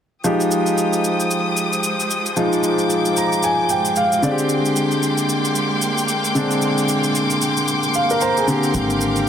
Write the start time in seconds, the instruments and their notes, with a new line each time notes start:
0.24 grand piano F3 G#3 D#4 G4, string section F3 G#3 G5 D#6, shaker
0.41 shaker
0.51 shaker
0.66 shaker
0.78 shaker
0.93 shaker
1.04 shaker
1.20 shaker
1.31 shaker
1.57 shaker
1.73 shaker
1.84 shaker
2.00 shaker
2.11 shaker
2.26 shaker
2.36 grand piano F3 G#3 D#4 F4, string section D6, shaker
2.53 shaker
2.64 shaker
2.79 shaker
2.90 shaker
3.05 shaker
3.17 grand piano A#5, shaker
3.32 shaker
3.43 grand piano G#5, shaker
3.69 grand piano G5, shaker
3.85 shaker
3.96 grand piano F5, shaker
4.12 shaker
4.22 grand piano D3 G#3 C4 F4 D5, string section A#3 C6 D6, shaker
4.31 grand piano G4
4.39 shaker
4.49 shaker
4.66 shaker
4.76 shaker
4.91 shaker
5.03 shaker
5.18 shaker
5.29 shaker
5.45 shaker
5.55 shaker
5.82 shaker
5.98 shaker
6.08 shaker
6.25 shaker
6.35 grand piano D3 G#3 C4 D4, shaker
6.51 shaker
6.62 shaker
6.78 shaker
6.89 shaker
7.04 shaker
7.15 shaker
7.30 shaker
7.42 shaker
7.57 shaker
7.68 shaker
7.83 shaker
7.94 grand piano F5, shaker
8.10 grand piano A#4, shaker
8.21 grand piano C5 A#5, shaker
8.37 grand piano G#4, shaker
8.47 grand piano D3 A#3 C4 G4, string section A#4, shaker
8.63 shaker
8.74 upright bass G#1, shaker
8.90 shaker
9.01 shaker
9.16 shaker